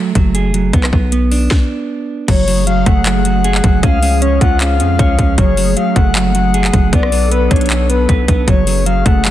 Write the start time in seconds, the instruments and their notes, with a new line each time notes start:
Already playing: clean electric guitar F#3 A3
0.15 808-style bass F#1, clean electric guitar F#3, kick, closed hi-hat
0.35 clean electric guitar G#4, closed hi-hat
0.45 808-style bass F1
0.54 clean electric guitar F#3, closed hi-hat
0.59 808-style bass F#1
0.73 808-style bass B1, clean electric guitar B3, kick, closed hi-hat
0.84 cross-stick, clap
0.93 808-style bass B1, clean electric guitar B3, kick
1.12 clean electric guitar B3, closed hi-hat
1.31 clean electric guitar D4, open hi-hat
1.51 kick, snare
2.28 808-style bass F#1, analog synth pad F#3 A3 C#4 G#4, clean electric guitar F#3, soft synth lead C#5, kick, closed hi-hat, crash
2.48 clean electric guitar F#3, open hi-hat
2.67 clean electric guitar F#3, soft synth lead F5, closed hi-hat
2.86 808-style bass F#1, clean electric guitar A3, soft synth lead F#5, kick, closed hi-hat
3.06 clean electric guitar F#3, clap, closed hi-hat
3.25 clean electric guitar F#3, closed hi-hat
3.44 clean electric guitar G#4, closed hi-hat
3.55 clap
3.64 808-style bass F#1, clean electric guitar F#3, kick, closed hi-hat
3.83 808-style bass C#2, analog synth pad F3 G#3 G#4, clean electric guitar C#4, soft synth lead F5, kick, closed hi-hat
4.03 clean electric guitar C#4, open hi-hat
4.22 clean electric guitar C#4, soft synth lead C#5, closed hi-hat
4.41 808-style bass C#2, clean electric guitar F4, soft synth lead F#5, kick, closed hi-hat
4.60 clean electric guitar C#4, soft synth lead F5, clap, closed hi-hat
4.80 808-style bass F2, clean electric guitar C#4, closed hi-hat
4.99 808-style bass C#2, clean electric guitar C#5, kick, closed hi-hat
5.18 808-style bass C#2, clean electric guitar C#4, kick, closed hi-hat
5.38 808-style bass F#1, clean electric guitar F#3, analog synth pad F#3 A3, soft synth lead C#5, kick, closed hi-hat
5.57 clean electric guitar F#3, open hi-hat
5.77 clean electric guitar F#3, soft synth lead F5, closed hi-hat
5.96 808-style bass F#1, clean electric guitar A3, soft synth lead F#5, kick, closed hi-hat
6.15 clean electric guitar F#3, clap, closed hi-hat
6.35 clean electric guitar F#3, closed hi-hat
6.54 clean electric guitar G#4, closed hi-hat
6.64 clap
6.73 808-style bass F#1, clean electric guitar F#3, kick, closed hi-hat
6.93 808-style bass B1, clean electric guitar B3, analog synth pad B3 D4 A4, soft synth lead D5, kick, closed hi-hat
7.03 cross-stick
7.12 clean electric guitar B3, open hi-hat
7.31 clean electric guitar B3, soft synth lead B4, closed hi-hat
7.51 808-style bass B1, clean electric guitar D4, soft synth lead C#5, kick, closed hi-hat
7.56 closed hi-hat
7.61 closed hi-hat
7.66 closed hi-hat
7.70 clean electric guitar B3, clap, closed hi-hat
7.89 clean electric guitar B3, soft synth lead B4, closed hi-hat
8.09 808-style bass B1, clean electric guitar B4, kick, closed hi-hat
8.28 808-style bass B1, clean electric guitar B3, kick, closed hi-hat
8.48 808-style bass F#1, clean electric guitar F#3, analog synth pad A3 C#4 G#4, soft synth lead C#5, kick, closed hi-hat
8.67 clean electric guitar F#3, open hi-hat
8.86 clean electric guitar F#3, soft synth lead F5, closed hi-hat
9.06 808-style bass F#1, clean electric guitar A3, soft synth lead F#5, kick, closed hi-hat
9.25 clean electric guitar F#3, clap, closed hi-hat